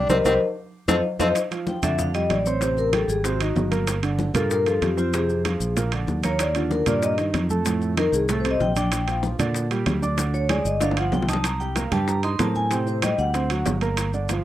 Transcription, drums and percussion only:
0.10 high bongo, high conga, high timbale, maracas
0.25 high bongo, high conga, high timbale, maracas
0.88 high bongo, high conga, high timbale, maracas
1.20 high bongo, high conga, high timbale, maracas
1.35 high bongo, high conga, high timbale, maracas
1.51 high bongo, high conga, high timbale, maracas
1.67 high bongo, high conga, maracas
1.83 high bongo, low conga, high timbale, maracas
1.99 high bongo, high conga, low conga, maracas
2.14 high bongo, high conga, high timbale, maracas
2.30 high bongo, low bongo, high conga, high timbale, maracas
2.46 maracas
2.61 high bongo, high conga, high timbale, maracas
2.77 high bongo, high conga, maracas
2.93 high bongo, high conga, high timbale, maracas
3.09 high bongo, high conga, maracas
3.24 high bongo, high conga, high timbale, maracas
3.40 high bongo, high conga, high timbale, maracas
3.56 high bongo, low bongo, high conga, low timbale, maracas
3.72 high conga, high timbale, maracas
3.87 high bongo, high conga, high timbale, maracas
4.03 high bongo, high conga, high timbale, maracas
4.19 high bongo, high conga, maracas
4.34 high bongo, low conga, high timbale, maracas
4.50 high bongo, high conga, maracas
4.66 high bongo, high conga, high timbale, maracas
4.82 high bongo, low bongo, high conga, high timbale, maracas
4.98 maracas
5.13 high bongo, high timbale, maracas
5.29 high bongo, high conga, maracas
5.45 high bongo, high conga, high timbale, maracas
5.61 high bongo, high conga, maracas
5.77 high bongo, high conga, high timbale, maracas
5.92 high bongo, high conga, high timbale, maracas
6.08 high bongo, low bongo, high conga, maracas
6.24 high conga, high timbale, maracas
6.39 high bongo, high conga, high timbale, maracas
6.55 high bongo, high conga, high timbale, maracas
6.71 high bongo, high conga, maracas
6.86 low conga, high timbale, maracas
7.02 high bongo, high conga, maracas
7.18 high bongo, high conga, high timbale, maracas
7.34 high bongo, low bongo, high conga, high timbale, maracas
7.50 high conga, maracas
7.66 high bongo, high conga, high timbale, maracas
7.81 high bongo, high conga, maracas
7.97 high bongo, high conga, high timbale, maracas
8.13 high bongo, high conga, maracas
8.29 high bongo, high conga, high timbale, maracas
8.45 high bongo, high conga, high timbale, maracas
8.60 high bongo, low bongo, high conga, maracas
8.76 high conga, high timbale, maracas
8.92 high bongo, high timbale, maracas
9.08 high bongo, high conga, high timbale, maracas
9.23 high bongo, high conga, maracas
9.39 high bongo, low conga, high timbale, maracas
9.54 high bongo, high conga, maracas
9.71 high bongo, high conga, high timbale, maracas
9.86 high bongo, low bongo, high conga, high timbale, low timbale, maracas
10.02 high conga, maracas
10.18 high bongo, high conga, high timbale, maracas
10.34 high bongo, high conga, maracas
10.49 high bongo, high conga, high timbale, maracas
10.65 high bongo, high conga, maracas
10.80 high bongo, high conga, high timbale, maracas
10.91 high bongo
10.97 high conga, high timbale, maracas
11.12 low bongo, high conga, low timbale, maracas
11.22 low bongo
11.29 high conga, high timbale, maracas
11.33 low bongo
11.44 high bongo, high conga, high timbale, maracas
11.61 high conga, maracas
11.76 high bongo, high conga, high timbale, low timbale, maracas
11.92 high conga, low conga, high timbale, maracas
12.08 high bongo, high conga, maracas
12.23 high conga, high timbale, maracas
12.39 high bongo, low bongo, high conga, high timbale, low timbale, maracas
12.55 high conga, maracas
12.71 high bongo, high conga, high timbale, maracas
12.87 high bongo, high conga, maracas
13.02 high bongo, high conga, high timbale, low timbale, maracas
13.18 high bongo, high conga, maracas
13.34 high bongo, high conga, high timbale, maracas
13.50 high bongo, high conga, high timbale, maracas
13.66 high bongo, low bongo, high conga, low timbale, maracas
13.81 high timbale, maracas
13.97 high bongo, high conga, high timbale, maracas
14.13 high conga, maracas
14.29 high bongo, high conga, high timbale, low timbale, maracas

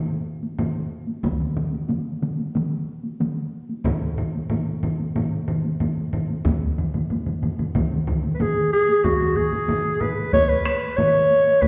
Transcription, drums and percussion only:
0.43 taiko high
0.59 taiko low-mid, taiko high
1.07 taiko high
1.23 taiko, taiko mid, taiko high
1.40 taiko mid
1.57 taiko mid
1.73 taiko high
1.89 taiko mid, taiko high
2.22 taiko mid, taiko high
2.38 taiko high
2.55 taiko mid, taiko high
3.03 taiko high
3.20 taiko mid, taiko high
3.69 taiko high
3.84 taiko, taiko low-mid, taiko high
4.18 taiko low-mid
4.35 taiko high
4.50 taiko low-mid, taiko high
4.83 taiko low-mid, taiko high
4.99 taiko high
5.15 taiko low-mid, taiko high
5.48 taiko low-mid
5.64 taiko high
5.80 taiko low-mid, taiko high
6.13 taiko low-mid
6.30 taiko high
6.45 taiko, taiko low-mid, taiko mid, taiko high
6.78 taiko low-mid, taiko mid
6.94 taiko low-mid, taiko mid, taiko high
7.10 taiko low-mid, taiko mid, taiko high
7.26 taiko low-mid, taiko mid
7.43 taiko low-mid, taiko mid, taiko high
7.59 taiko low-mid, taiko mid, taiko high
7.75 taiko, taiko low-mid, taiko mid, taiko high
8.07 taiko, taiko low-mid, taiko mid
8.23 taiko high
8.40 taiko low-mid, taiko mid, taiko high
8.88 taiko high
9.04 taiko, taiko low-mid, taiko high
9.21 taiko low-mid, taiko high
9.37 taiko low-mid, taiko high
9.52 taiko low-mid, taiko high
9.68 taiko low-mid, taiko high
9.84 taiko high
10.01 taiko low-mid, taiko high
10.18 taiko high
10.33 taiko, taiko low-mid, taiko high
10.50 taiko high
10.65 taiko rim, taiko high
10.98 taiko low-mid, taiko high
11.15 taiko high
11.30 taiko high
11.46 taiko high
11.62 taiko, taiko mid, taiko high

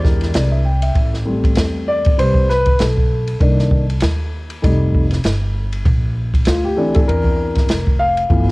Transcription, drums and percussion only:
0.04 kick, snare
0.21 snare, ride
0.34 snare, hi-hat pedal, ride
0.82 ride
0.95 kick, ride
1.14 snare
1.44 kick, ride
1.55 snare, hi-hat pedal, ride
2.05 kick, ride
2.19 ride
2.34 kick
2.50 snare
2.66 kick, ride
2.79 snare, hi-hat pedal, ride
2.97 kick
3.27 ride
3.40 kick, ride
3.59 snare
3.71 kick
3.90 ride
4.00 snare, hi-hat pedal, ride
4.50 ride
4.64 kick, ride
4.95 kick
5.11 snare, ride
5.24 snare, hi-hat pedal, ride
5.72 ride
5.85 kick, ride
6.34 kick, ride
6.45 snare, hi-hat pedal, ride
6.94 kick, ride
7.09 ride
7.24 kick
7.55 kick, snare, ride
7.69 snare, hi-hat pedal, ride
7.87 kick
8.17 ride
8.30 kick, ride
8.48 snare

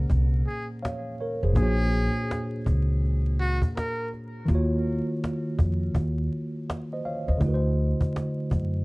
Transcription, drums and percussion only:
0.10 cajon bass
0.47 cajon slap
0.85 cajon slap
1.20 cajon slap
1.56 cajon bass
2.31 cajon slap
2.66 cajon bass
3.05 cajon slap
3.39 cajon slap
3.62 cajon bass
3.77 cajon slap
4.13 cajon slap
4.48 cajon bass
4.87 cajon slap
5.24 cajon slap
5.59 cajon bass
5.95 cajon bass
6.32 cajon slap
6.70 cajon slap
7.05 cajon slap
7.41 cajon bass
7.80 cajon slap
8.01 cajon bass
8.16 cajon slap
8.51 cajon bass

